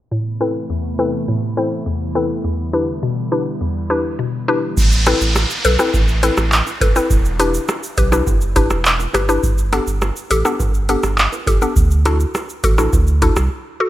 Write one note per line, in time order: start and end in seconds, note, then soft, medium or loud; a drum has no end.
0.11 0.55 A2 medium
0.11 2.42 C3 medium
0.11 4.73 E3 medium
0.11 2.42 A3 medium
0.11 4.73 B3 medium
0.11 4.73 E4 medium
0.41 0.52 C4 medium
0.41 0.52 E4 medium
0.41 0.52 A4 medium
0.41 0.52 B4 medium
0.70 1.13 E2 medium
0.99 1.10 C4 medium
0.99 1.10 E4 medium
0.99 1.10 A4 medium
0.99 1.10 B4 loud
1.28 1.71 A2 medium
1.57 1.69 C4 medium
1.57 1.69 E4 medium
1.57 1.69 A4 medium
1.57 1.69 C5 medium
1.86 2.29 E2 medium
2.15 2.27 C4 medium
2.15 2.27 E4 medium
2.15 2.27 A4 medium
2.15 2.27 B4 medium
2.44 2.88 E2 medium
2.44 4.75 D3 medium
2.44 4.75 G3 medium
2.73 2.85 D4 medium
2.73 2.85 E4 medium
2.73 2.85 G4 medium
2.73 2.85 B4 medium
3.03 3.46 B2 medium
3.32 3.43 D4 medium
3.32 3.43 E4 medium
3.32 3.43 G4 medium
3.32 3.43 B4 loud
3.61 4.04 E2 medium
3.90 4.02 D4 medium
3.90 4.02 E4 medium
3.90 4.02 G4 medium
3.90 4.02 B4 medium
4.19 4.62 B2 medium
4.48 4.60 D4 medium
4.48 4.60 E4 medium
4.48 4.60 G4 medium
4.48 4.60 B4 medium
4.77 5.14 A1 loud
4.77 kick loud
4.77 downlifter medium
4.77 shaker medium
4.92 shaker medium
5.06 5.18 C4 medium
5.06 5.18 E4 medium
5.06 5.18 A4 medium
5.06 5.18 B4 loud
5.06 cross-stick loud
5.06 closed hi-hat medium
5.06 shaker soft
5.21 5.45 A1 loud
5.21 shaker medium
5.35 cross-stick loud
5.35 high bongo medium
5.35 shaker medium
5.50 shaker medium
5.64 5.77 B1 medium
5.64 5.71 A4 medium
5.64 5.71 B4 loud
5.64 closed hi-hat medium
5.64 high bongo medium
5.64 shaker medium
5.79 5.91 C4 medium
5.79 5.91 E4 medium
5.79 5.91 A4 medium
5.79 5.91 B4 medium
5.79 cross-stick medium
5.79 high bongo medium
5.79 shaker medium
5.94 6.30 A1 loud
5.94 kick medium
5.94 high bongo medium
5.94 shaker medium
6.08 shaker medium
6.23 6.35 C4 medium
6.23 6.35 E4 medium
6.23 6.35 A4 medium
6.23 6.35 B4 loud
6.23 closed hi-hat medium
6.23 shaker medium
6.37 6.62 A1 loud
6.37 cross-stick loud
6.37 shaker medium
6.52 clap loud
6.52 shaker medium
6.67 high bongo medium
6.67 shaker soft
6.80 6.93 F#1 medium
6.80 6.87 A4 medium
6.80 6.87 B4 loud
6.80 kick loud
6.80 closed hi-hat medium
6.80 low bongo medium
6.80 shaker medium
6.96 7.07 C4 medium
6.96 7.08 E4 medium
6.96 7.08 A4 medium
6.96 7.08 B4 medium
6.96 shaker medium
7.10 7.59 E1 loud
7.10 kick loud
7.10 shaker medium
7.25 shaker medium
7.39 7.51 D4 medium
7.39 7.51 E4 medium
7.39 7.51 G4 medium
7.39 7.51 B4 medium
7.39 closed hi-hat medium
7.39 shaker soft
7.54 shaker medium
7.69 cross-stick loud
7.69 high bongo medium
7.69 shaker medium
7.83 shaker medium
7.97 8.22 B1 medium
7.97 8.03 G4 medium
7.97 8.04 B4 loud
7.97 kick loud
7.97 closed hi-hat medium
7.97 high bongo medium
7.97 shaker medium
8.12 8.24 D4 medium
8.12 8.24 E4 medium
8.12 8.24 G4 medium
8.12 8.24 B4 medium
8.12 cross-stick medium
8.12 high bongo medium
8.12 shaker medium
8.27 8.72 F#1 loud
8.27 kick medium
8.27 high bongo medium
8.27 shaker medium
8.41 shaker soft
8.56 8.68 D4 medium
8.56 8.68 E4 medium
8.56 8.68 G4 medium
8.56 8.68 B4 medium
8.56 kick medium
8.56 closed hi-hat medium
8.56 shaker medium
8.70 9.07 E1 medium
8.70 cross-stick medium
8.70 shaker medium
8.85 clap loud
8.85 shaker medium
9.00 high bongo medium
9.00 shaker soft
9.13 9.39 G1 loud
9.13 9.20 G4 medium
9.13 9.20 B4 loud
9.13 cross-stick loud
9.13 closed hi-hat medium
9.13 low bongo medium
9.13 shaker medium
9.29 9.40 D4 medium
9.29 9.40 E4 medium
9.29 9.40 G4 medium
9.29 9.40 B4 medium
9.29 shaker medium
9.43 9.80 G1 loud
9.43 kick loud
9.43 shaker medium
9.58 shaker medium
9.72 9.84 B3 medium
9.72 9.84 D4 medium
9.72 9.84 G4 medium
9.72 9.84 A4 loud
9.72 cross-stick loud
9.72 closed hi-hat medium
9.72 shaker soft
9.87 10.11 G1 loud
9.87 shaker medium
10.02 cross-stick loud
10.02 high bongo medium
10.02 shaker medium
10.16 shaker medium
10.30 10.43 A1 medium
10.30 10.37 G4 medium
10.30 10.37 A4 loud
10.30 closed hi-hat medium
10.30 high bongo medium
10.30 shaker medium
10.45 10.57 B3 medium
10.45 10.57 D4 medium
10.45 10.57 G4 medium
10.45 10.57 A4 medium
10.45 cross-stick medium
10.45 high bongo medium
10.45 shaker medium
10.60 10.96 G1 loud
10.60 kick loud
10.60 high bongo medium
10.60 shaker medium
10.74 shaker soft
10.89 11.01 B3 medium
10.89 11.01 D4 medium
10.89 11.01 G4 medium
10.89 11.01 A4 medium
10.89 closed hi-hat medium
10.89 shaker medium
11.03 11.28 G1 medium
11.03 cross-stick medium
11.03 shaker medium
11.18 clap loud
11.18 shaker medium
11.32 high bongo medium
11.32 shaker soft
11.46 11.59 F#1 medium
11.46 11.53 G4 medium
11.46 11.53 A4 loud
11.46 kick loud
11.46 closed hi-hat medium
11.46 low bongo medium
11.46 shaker medium
11.62 11.73 B3 medium
11.62 11.73 D4 medium
11.62 11.74 G4 medium
11.62 11.74 A4 medium
11.62 shaker medium
11.76 12.25 D2 loud
11.76 kick loud
11.76 shaker medium
11.91 shaker medium
12.05 12.17 D4 medium
12.05 12.17 E4 medium
12.05 12.17 F#4 medium
12.05 12.17 A4 medium
12.05 cross-stick loud
12.05 closed hi-hat medium
12.05 shaker soft
12.20 shaker medium
12.35 cross-stick loud
12.35 high bongo medium
12.35 shaker medium
12.49 shaker medium
12.63 12.88 A1 loud
12.63 12.70 F#4 loud
12.63 12.70 A4 loud
12.63 kick medium
12.63 closed hi-hat medium
12.63 high bongo medium
12.63 shaker medium
12.78 12.90 D4 medium
12.78 12.90 E4 medium
12.78 12.90 F#4 medium
12.78 12.90 A4 medium
12.78 cross-stick medium
12.78 high bongo medium
12.78 shaker medium
12.93 13.30 D2 loud
12.93 kick medium
12.93 high bongo medium
12.93 shaker medium
13.07 shaker medium
13.22 13.34 D4 medium
13.22 13.34 E4 medium
13.22 13.34 F#4 medium
13.22 13.34 A4 medium
13.22 kick medium
13.22 closed hi-hat medium
13.22 shaker medium
13.36 13.49 C2 medium
13.36 cross-stick loud
13.36 shaker medium
13.80 13.86 F#4 medium
13.80 13.86 A4 loud